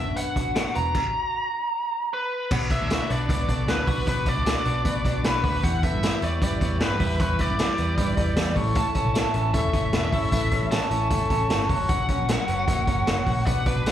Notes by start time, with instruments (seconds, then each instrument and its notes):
Already playing: picked electric bass F#2, clean electric guitar B2 B3 D4 F#4, lead electric guitar E5
0.16 clean electric guitar B3, lead electric guitar F#5, closed hi-hat
0.36 clean electric guitar F#4, kick, closed hi-hat
0.55 clean electric guitar D4, snare, closed hi-hat
0.75 picked electric bass E1, clean electric guitar B3, lead electric guitar A#5, closed hi-hat
0.95 kick, crash
2.14 lead electric guitar B4
2.51 picked electric bass B1, clean electric guitar B2, transistor combo organ B3 D4 F#4 B4, lead electric guitar F#5, kick, crash
2.70 transistor combo organ B3 D4 F#4 B4, clean electric guitar D4, lead electric guitar E5, kick, closed hi-hat
2.81 picked electric bass D2
2.88 transistor combo organ B3 D4 F#4 C#5, clean electric guitar F#4, snare, closed hi-hat
3.08 picked electric bass B1, transistor combo organ B3 D4 F#4 B4, clean electric guitar D4, lead electric guitar D5, closed hi-hat
3.28 picked electric bass C#2, transistor combo organ B3 D4 F#4 B4, clean electric guitar B3, lead electric guitar D5, kick, closed hi-hat
3.48 picked electric bass B1, transistor combo organ B3 D4 F#4 A4, clean electric guitar D4, kick, closed hi-hat
3.67 picked electric bass D2, transistor combo organ B3 D4 F#4 B4, clean electric guitar B3, lead electric guitar B4, snare, closed hi-hat
3.87 picked electric bass B1, transistor combo organ B3 D4 F#4 B4, clean electric guitar F#4, kick, open hi-hat
4.05 picked electric bass B1, clean electric guitar B2, transistor combo organ B3 D4 F#4 B4, lead electric guitar B4, kick, closed hi-hat
4.25 transistor combo organ B3 D4 F#4 B4, clean electric guitar D4, lead electric guitar D5, kick, closed hi-hat
4.36 picked electric bass C#2
4.45 transistor combo organ B3 D4 F#4 A4, clean electric guitar F#4, snare, closed hi-hat
4.64 picked electric bass B1, transistor combo organ B3 D4 F#4 D5, clean electric guitar D4, closed hi-hat
4.84 picked electric bass D2, transistor combo organ B3 D4 F#4 B4, clean electric guitar B3, kick, closed hi-hat
5.04 picked electric bass B1, transistor combo organ B3 D4 F#4 B4, clean electric guitar D4, kick, closed hi-hat
5.24 picked electric bass B1, transistor combo organ B3 D4 F#4 C#5, clean electric guitar B3, lead electric guitar B4, snare, closed hi-hat
5.43 picked electric bass D2, transistor combo organ B3 D4 F#4 B4, clean electric guitar F#4, kick, open hi-hat
5.62 clean electric guitar E2, picked electric bass E2, transistor combo organ B3 E4 G4 B4, lead electric guitar F#5, kick, closed hi-hat
5.82 transistor combo organ B3 E4 G4 A4, clean electric guitar B3, lead electric guitar E5, kick, closed hi-hat
5.93 picked electric bass G2
6.02 transistor combo organ B3 E4 G4 B4, clean electric guitar E4, snare, closed hi-hat
6.21 picked electric bass E2, transistor combo organ B3 E4 G4 C#5, clean electric guitar B3, lead electric guitar D5, closed hi-hat
6.41 picked electric bass F#2, clean electric guitar G3, transistor combo organ B3 E4 G4 B4, lead electric guitar D5, kick, closed hi-hat
6.60 picked electric bass E2, transistor combo organ B3 E4 G4 C#5, clean electric guitar B3, kick, closed hi-hat
6.80 picked electric bass G2, clean electric guitar G3, transistor combo organ B3 E4 G4 A4, lead electric guitar B4, snare, closed hi-hat
6.99 picked electric bass E2, transistor combo organ B3 E4 G4 B4, clean electric guitar E4, kick, open hi-hat
7.19 clean electric guitar E2, picked electric bass E2, transistor combo organ B3 E4 G4 C#5, lead electric guitar B4, kick, closed hi-hat
7.39 transistor combo organ B3 E4 G4 B4, clean electric guitar B3, lead electric guitar D5, kick, closed hi-hat
7.50 picked electric bass F#2
7.59 transistor combo organ B3 E4 G4 B4, clean electric guitar E4, snare, closed hi-hat
7.78 picked electric bass E2, transistor combo organ B3 E4 G4 D5, clean electric guitar B3, closed hi-hat
7.97 picked electric bass G2, clean electric guitar G3, transistor combo organ B3 E4 G4 B4, kick, closed hi-hat
8.17 picked electric bass E2, transistor combo organ B3 E4 G4 D5, clean electric guitar B3, kick, closed hi-hat
8.36 picked electric bass E2, clean electric guitar G3, transistor combo organ B3 E4 G4 D5, snare, closed hi-hat
8.55 picked electric bass A1, clean electric guitar A2, transistor combo organ C#4 E4 A4 C#5, kick, open hi-hat
8.75 clean electric guitar A2, lead electric guitar A5, kick, closed hi-hat
8.95 clean electric guitar C#4, transistor combo organ C#4 E4 A4 C#5, kick, closed hi-hat
9.05 picked electric bass B1
9.14 transistor combo organ C#4 E4 A4 E5, clean electric guitar E4, snare, closed hi-hat
9.34 picked electric bass A1, clean electric guitar C#4, transistor combo organ C#4 E4 A4 B4, closed hi-hat
9.53 picked electric bass E1, clean electric guitar A3, transistor combo organ C#4 E4 A4 C#5, lead electric guitar E5, kick, closed hi-hat
9.73 picked electric bass F#1, transistor combo organ C#4 E4 A4 C#5, clean electric guitar C#4, kick, closed hi-hat
9.93 picked electric bass E1, clean electric guitar A3, transistor combo organ C#4 E4 A4 E5, snare, closed hi-hat
10.12 picked electric bass G1, transistor combo organ C#4 E4 A4 C#5, clean electric guitar E4, kick, open hi-hat
10.31 picked electric bass A1, clean electric guitar A2, transistor combo organ C#4 E4 A4 B4, kick, closed hi-hat
10.51 transistor combo organ C#4 E4 A4 B4, clean electric guitar C#4, kick, closed hi-hat
10.62 picked electric bass A1
10.71 transistor combo organ C#4 E4 A4 E5, clean electric guitar E4, lead electric guitar A5, snare, closed hi-hat
10.91 picked electric bass A1, transistor combo organ C#4 E4 A4 C#5, clean electric guitar C#4, closed hi-hat
11.10 picked electric bass G1, clean electric guitar A3, transistor combo organ C#4 E4 A4 C#5, kick, closed hi-hat
11.30 picked electric bass A1, transistor combo organ C#4 E4 A4 C#5, clean electric guitar C#4, kick, closed hi-hat
11.50 picked electric bass G1, clean electric guitar A3, transistor combo organ C#4 E4 A4 C#5, snare, closed hi-hat
11.69 picked electric bass F#1, clean electric guitar F#2, transistor combo organ C#4 F#4 A#4 C#5, kick, open hi-hat
11.89 clean electric guitar F#2, lead electric guitar F#5, kick, closed hi-hat
12.08 transistor combo organ C#4 F#4 A#4 C#5, clean electric guitar C#4, kick, closed hi-hat
12.19 picked electric bass A#1
12.28 transistor combo organ C#4 F#4 A#4 E5, clean electric guitar F#4, snare, closed hi-hat
12.47 picked electric bass F#1, clean electric guitar B3, transistor combo organ C#4 F#4 A#4 C#5, closed hi-hat
12.59 clean electric guitar C#4
12.67 picked electric bass F#1, clean electric guitar A#3, transistor combo organ C#4 F#4 A#4 E5, kick, closed hi-hat
12.86 picked electric bass G1, transistor combo organ C#4 F#4 A#4 C#5, clean electric guitar C#4, kick, closed hi-hat
13.05 picked electric bass F#1, clean electric guitar A#3, transistor combo organ C#4 F#4 A#4 C#5, snare, closed hi-hat
13.25 picked electric bass A#1, transistor combo organ C#4 F#4 A#4 C#5, clean electric guitar F#4, kick, open hi-hat
13.46 picked electric bass B1, clean electric guitar B2, transistor combo organ D4 F#4 B4 D5, lead electric guitar F#5, kick, closed hi-hat
13.66 transistor combo organ D4 F#4 B4 D5, clean electric guitar D4, lead electric guitar B4, kick, closed hi-hat
13.76 picked electric bass B1
13.85 transistor combo organ D4 F#4 B4 D5, clean electric guitar F#4, snare, closed hi-hat